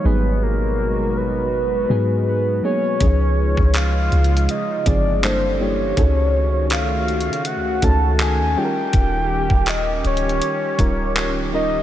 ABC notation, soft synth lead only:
X:1
M:4/4
L:1/8
Q:"Swing 16ths" 1/4=81
K:Ebdor
V:1 name="Soft synth lead"
_c B2 c3 c d- | d2 f2 e =d c _d- | d2 f2 g =a _a =g- | =g2 e d3 d e |]